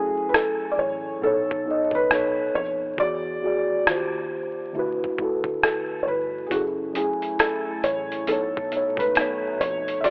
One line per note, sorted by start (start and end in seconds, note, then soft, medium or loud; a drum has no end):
0.00 1.23 F#3 medium
0.00 1.09 A3 medium
0.00 1.23 C#4 medium
0.00 1.24 E4 medium
0.00 0.30 G#4 medium
0.00 1.24 G#4 medium
0.00 1.23 A4 medium
0.00 1.08 G#5 medium
0.29 0.34 B4 medium
0.34 0.74 A4 medium
0.34 cross-stick loud
0.72 0.77 D5 medium
0.78 1.17 A1 medium
0.78 1.24 C#5 medium
1.20 1.85 B1 loud
1.20 1.58 B2 medium
1.20 1.59 B3 medium
1.20 1.60 D#4 medium
1.20 1.90 A4 medium
1.25 1.61 A4 medium
1.25 1.61 C#5 medium
1.51 kick medium
1.64 2.07 B2 medium
1.64 2.09 B3 medium
1.64 2.10 D#4 medium
1.69 2.12 A4 medium
1.69 2.12 D#5 medium
1.91 2.07 C#2 medium
1.91 2.51 B4 medium
1.91 kick medium
2.08 2.49 B1 medium
2.08 2.84 B2 medium
2.08 2.84 B3 medium
2.08 2.85 D#4 medium
2.08 cross-stick medium
2.13 2.86 A4 medium
2.13 2.87 C#5 medium
2.55 2.94 F2 medium
2.55 2.65 C#5 loud
2.96 3.77 E2 loud
2.96 3.29 E3 medium
2.96 3.30 B3 medium
2.96 3.31 F#4 medium
2.96 4.71 D5 loud
2.96 kick loud
3.01 3.31 G#4 medium
3.01 3.32 D5 medium
3.40 3.85 E3 medium
3.40 3.86 B3 medium
3.40 3.87 F#4 medium
3.45 3.88 G#4 medium
3.45 3.89 D5 medium
3.84 4.65 D#2 medium
3.84 4.60 D#3 medium
3.84 4.61 A#3 medium
3.84 4.62 F4 medium
3.84 cross-stick loud
3.89 3.96 F#4 medium
3.89 4.63 C5 medium
3.96 4.66 G4 medium
4.73 5.38 D2 loud
4.73 5.11 D3 medium
4.73 5.12 A3 medium
4.73 5.13 E4 medium
4.78 5.13 F#4 medium
4.78 5.14 B4 loud
5.04 kick medium
5.17 6.03 D3 medium
5.17 6.04 A3 medium
5.17 6.04 E4 medium
5.17 kick medium
5.22 6.05 F#4 medium
5.22 6.06 A4 medium
5.44 5.60 D2 medium
5.44 kick medium
5.63 6.03 A4 medium
5.63 cross-stick loud
6.03 6.07 C#5 medium
6.07 6.46 G1 medium
6.07 6.43 B4 medium
6.47 6.82 F#3 medium
6.47 8.25 E4 medium
6.47 6.51 G#4 medium
6.51 7.15 F#1 loud
6.51 8.26 A2 medium
6.51 8.26 A3 medium
6.51 6.83 C#4 medium
6.51 6.84 E4 medium
6.51 6.61 F#4 medium
6.51 6.84 G#4 medium
6.51 kick loud
6.51 closed hi-hat medium
6.56 6.85 A4 medium
6.94 8.11 F#3 medium
6.94 8.12 C#4 medium
6.94 8.13 E4 medium
6.94 7.05 G#4 medium
6.94 closed hi-hat medium
6.98 8.14 A3 medium
6.98 8.14 G#5 medium
7.22 closed hi-hat soft
7.39 7.81 A4 medium
7.39 cross-stick loud
7.39 closed hi-hat medium
7.83 8.23 A1 medium
7.83 8.29 C#5 medium
7.83 closed hi-hat medium
8.12 closed hi-hat soft
8.26 8.91 B1 medium
8.26 8.64 B2 medium
8.26 10.02 A3 medium
8.26 8.65 B3 medium
8.26 10.02 D#4 medium
8.26 8.66 D#4 medium
8.26 9.01 A4 medium
8.26 closed hi-hat medium
8.31 8.66 A4 medium
8.31 8.67 C#5 medium
8.57 kick medium
8.70 9.13 B2 medium
8.70 9.15 B3 medium
8.70 9.17 D#4 medium
8.70 closed hi-hat medium
8.75 9.17 A4 medium
8.75 9.18 C#5 medium
8.97 9.13 C#2 medium
8.97 9.62 B4 medium
8.97 kick medium
8.97 closed hi-hat soft
9.14 9.55 B1 medium
9.14 9.90 B2 medium
9.14 9.90 B3 medium
9.14 9.91 D#4 medium
9.14 cross-stick loud
9.14 closed hi-hat medium
9.19 9.92 A4 medium
9.19 9.93 C#5 medium
9.60 9.99 F2 medium
9.60 9.96 C#5 loud
9.60 closed hi-hat medium
9.88 closed hi-hat soft
10.00 10.10 E2 loud
10.00 10.10 E3 medium
10.00 10.10 B3 medium
10.00 10.05 E5 medium
10.00 kick loud
10.00 closed hi-hat medium
10.05 10.10 F#4 medium
10.05 10.10 G#4 medium
10.05 10.10 D5 loud